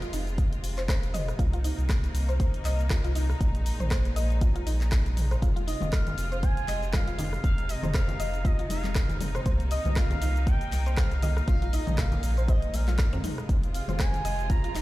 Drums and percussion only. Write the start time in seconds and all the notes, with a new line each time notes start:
0.02 closed hi-hat, shaker
0.13 open hi-hat, shaker
0.27 closed hi-hat, shaker
0.38 kick, closed hi-hat, shaker
0.53 closed hi-hat, shaker
0.64 open hi-hat, shaker
0.78 clap, closed hi-hat, shaker
0.89 kick, cross-stick, clap, closed hi-hat, shaker
1.03 closed hi-hat, shaker
1.14 mid tom, open hi-hat, shaker
1.28 cross-stick, closed hi-hat, shaker
1.39 kick, closed hi-hat, shaker
1.53 closed hi-hat, shaker
1.64 open hi-hat, shaker
1.79 closed hi-hat, shaker
1.89 kick, cross-stick, clap, closed hi-hat, shaker
2.04 closed hi-hat, shaker
2.15 open hi-hat, shaker
2.29 closed hi-hat, shaker
2.40 kick, closed hi-hat, shaker
2.54 closed hi-hat, shaker
2.65 clap, open hi-hat, shaker
2.79 closed hi-hat, shaker
2.90 kick, cross-stick, clap, closed hi-hat, shaker
3.04 closed hi-hat, shaker
3.15 open hi-hat, shaker
3.30 cross-stick, shaker
3.41 kick, closed hi-hat, shaker
3.55 closed hi-hat, shaker
3.66 open hi-hat, shaker
3.80 closed hi-hat, mid tom, shaker
3.91 kick, cross-stick, clap, closed hi-hat, shaker
4.05 closed hi-hat, shaker
4.16 open hi-hat, shaker
4.30 closed hi-hat, shaker
4.41 kick, closed hi-hat, shaker
4.56 closed hi-hat, shaker
4.67 open hi-hat, shaker
4.81 clap, closed hi-hat, shaker
4.92 kick, cross-stick, clap, closed hi-hat, shaker
5.06 closed hi-hat, shaker
5.17 mid tom, open hi-hat, shaker
5.31 cross-stick, closed hi-hat, shaker
5.42 kick, closed hi-hat, shaker
5.56 closed hi-hat, muted conga, shaker
5.68 open hi-hat, shaker
5.81 closed hi-hat, muted conga, high conga, low conga, shaker
5.93 kick, cross-stick, clap, closed hi-hat, shaker
6.06 closed hi-hat, muted conga, low conga, shaker
6.18 open hi-hat, shaker
6.32 closed hi-hat, shaker
6.43 kick, closed hi-hat, muted conga, shaker
6.57 closed hi-hat, shaker
6.68 clap, open hi-hat, muted conga, shaker
6.83 closed hi-hat, shaker
6.93 kick, cross-stick, clap, closed hi-hat, muted conga, high conga, shaker
7.08 closed hi-hat, shaker
7.19 open hi-hat, muted conga, low conga, shaker
7.33 cross-stick, shaker
7.44 kick, closed hi-hat, shaker
7.58 closed hi-hat, muted conga, shaker
7.69 open hi-hat, shaker
7.83 closed hi-hat, mid tom, muted conga, high conga, low conga, shaker
7.94 kick, cross-stick, clap, closed hi-hat, shaker
8.08 closed hi-hat, muted conga, low conga, shaker
8.20 open hi-hat, shaker
8.34 closed hi-hat, shaker
8.44 kick, closed hi-hat, muted conga, shaker
8.59 closed hi-hat, shaker
8.70 open hi-hat, muted conga, high conga, shaker
8.84 clap, closed hi-hat, high conga, shaker
8.95 kick, cross-stick, clap, closed hi-hat, muted conga, shaker
9.09 closed hi-hat, low conga, shaker
9.21 mid tom, open hi-hat, muted conga, high conga, shaker
9.35 cross-stick, closed hi-hat, shaker
9.46 kick, closed hi-hat, shaker
9.60 closed hi-hat, muted conga, shaker
9.71 open hi-hat, shaker
9.85 closed hi-hat, muted conga, high conga, low conga, shaker
9.96 kick, cross-stick, clap, closed hi-hat, shaker
10.10 closed hi-hat, muted conga, low conga, shaker
10.22 open hi-hat, shaker
10.36 closed hi-hat, shaker
10.47 kick, closed hi-hat, shaker
10.61 closed hi-hat, shaker
10.72 clap, open hi-hat, muted conga, shaker
10.86 closed hi-hat, shaker
10.97 kick, cross-stick, clap, closed hi-hat, muted conga, high conga, shaker
11.12 closed hi-hat, shaker
11.22 open hi-hat, muted conga, low conga, shaker
11.37 cross-stick, shaker
11.48 kick, closed hi-hat, shaker
11.62 closed hi-hat, muted conga, shaker
11.73 open hi-hat, shaker
11.87 closed hi-hat, mid tom, muted conga, high conga, low conga, shaker
11.98 kick, cross-stick, clap, closed hi-hat, shaker
12.12 closed hi-hat, muted conga, low conga, shaker
12.23 open hi-hat, shaker
12.37 closed hi-hat, shaker
12.48 kick, closed hi-hat, muted conga, high conga, shaker
12.62 closed hi-hat, shaker
12.73 open hi-hat, muted conga, high conga, shaker
12.88 clap, closed hi-hat, high conga, shaker
12.99 kick, cross-stick, clap, closed hi-hat, shaker
13.13 closed hi-hat, low conga, shaker
13.24 mid tom, open hi-hat, muted conga, high conga, shaker
13.38 cross-stick, closed hi-hat, shaker
13.49 kick, closed hi-hat, shaker
13.63 closed hi-hat, muted conga, shaker
13.74 open hi-hat, shaker
13.88 closed hi-hat, muted conga, high conga, low conga, shaker
13.99 kick, cross-stick, clap, closed hi-hat, shaker
14.13 closed hi-hat, muted conga, low conga, shaker
14.25 open hi-hat, shaker
14.39 closed hi-hat, shaker
14.50 kick, closed hi-hat, shaker
14.64 closed hi-hat, shaker
14.74 clap, open hi-hat, muted conga, shaker